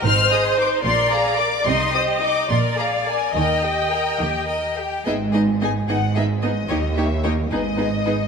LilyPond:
<<
  \new Staff \with { instrumentName = "Violin section" } { \time 6/8 \key ees \major \tempo 4. = 73 f'''8 ees'''8 d'''8 c'''8 bes''8 d'''8 | c'''8 ees'''8 d'''8 c'''8 bes''8 aes''8 | g''2~ g''8 r8 | \key gis \minor e''8 dis''8 gis''8 fis''8 e''8 dis''8~ |
dis''8 e''8 dis''8 dis''4. | }
  \new Staff \with { instrumentName = "Violin section" } { \time 6/8 \key ees \major <ees' c''>8 <aes' ees''>8 <ees' c''>8 <bes' d''>8 <aes' f''>8 <bes' d''>8 | <ees' ees''>8 <g' c''>8 <ees' ees''>8 <bes' d''>8 <aes' f''>8 <bes' d''>8 | <bes' ees''>8 <g' g''>8 <bes' ees''>8 <g' g''>8 <bes' ees''>8 <g' g''>8 | \key gis \minor <gis' dis''>8 <gis' dis''>8 <gis' dis''>8 <gis' dis''>8 <gis' dis''>8 <gis' dis''>8 |
<g' cis''>8 <g' cis''>8 <g' cis''>8 <gis' b'>8 <gis' b'>8 <gis' b'>8 | }
  \new Staff \with { instrumentName = "Viola section" } { \time 6/8 \key ees \major c''4. d''4. | ees''4. d''4. | ees''2~ ees''16 r8. | \key gis \minor <b dis'>8 <b dis'>8 <b dis'>8 <b dis'>8 <b dis'>8 <b dis'>8 |
<ais dis'>8 <ais dis'>8 <ais dis'>8 <b dis'>8 <b dis'>8 <b dis'>8 | }
  \new Staff \with { instrumentName = "Cello section" } { \clef bass \time 6/8 \key ees \major aes,4. bes,4. | c4. bes,4. | ees4. ees4. | \key gis \minor gis,4. gis,4. |
dis,4. gis,4. | }
  \new Staff \with { instrumentName = "Double bass section" } { \clef bass \time 6/8 \key ees \major aes,,4. bes,,4. | c,4. bes,,4. | ees,4. ees,4. | \key gis \minor gis,,4. gis,,4. |
dis,4. gis,,4. | }
>>